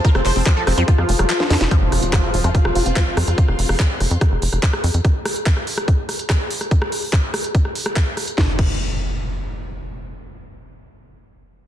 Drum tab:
CC |----------------|----------------|----------------|----------------|
HH |x-oo--oxx-oxx-ox|x-oxx-oxx-oxx-ox|x-oo--oxx-oxx-ox|x-oxx-oxx-oxx-ox|
CP |--x-x-------x---|----x-------x---|----x-------x---|----x-------x---|
SD |-r--r-r--r-r-ooo|--r-r--r-r--r-r-|-r-r--r-r--r-r--|r-r--r-r--r-r--r|
BD |o---o---o-------|o---o---o---o---|o---o---o---o---|o---o---o---o---|

CC |----------------|--x-------------|----------------|
HH |x-oo--oxx-oxx-ox|----------------|----------------|
CP |----x-------x---|----------------|----------------|
SD |-r--r-r--r-r--r-|o---------------|----------------|
BD |o---o---o---o---|o-o-------------|----------------|